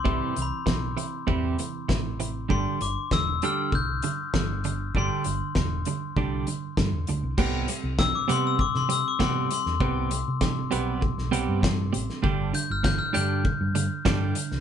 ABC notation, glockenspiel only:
X:1
M:4/4
L:1/16
Q:1/4=99
K:C
V:1 name="Glockenspiel"
c'2 b12 z2 | c'2 d'2 e'2 f'2 g'8 | c'12 z4 | z4 e' d' c' e' d' c' e' d' c'2 c'2- |
c'6 z8 z2 | z2 g' f' g' f' g'8 z2 |]